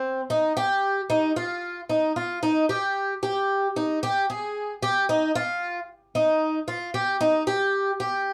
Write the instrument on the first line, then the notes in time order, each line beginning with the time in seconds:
twelve-string acoustic guitar
Already playing: C4
0.30 D#4
0.57 G4
1.10 D#4
1.36 F4
1.90 D#4
2.16 F4
2.43 D#4
2.69 G4
3.23 G4
3.76 D#4
4.03 G4
4.30 G#4
4.83 G4
5.09 D#4
5.35 F4
6.15 D#4
6.68 F4
6.94 G4
7.21 D#4
7.47 G4
8.00 G4